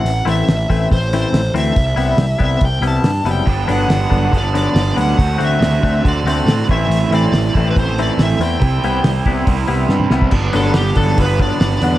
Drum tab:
CC |----------------|----------------|----------------|----------------|
HH |o-o-o-o-o-o-o-o-|o-o-o-o-o-o-o-o-|o-o-o-o-o-o-o-o-|o-o-o-o-o-o-o-o-|
SD |----o-------o---|----o-------o---|----o-------o---|----o-------o---|
T2 |----------------|----------------|----------------|----------------|
BD |------o-o-------|o-----o-o-------|o-----o-o-------|o-----o-o-----o-|

CC |----------------|----------------|x---------------|
HH |o-o-o-o-o-o-o-o-|o-o-o-o-o-o-----|--o-o-o-o-o-o-o-|
SD |----o-------o---|----o-------o-o-|----o-------o---|
T2 |----------------|-------------o--|----------------|
BD |------o-o-------|o-----o-o------o|o-----o-o-o-----|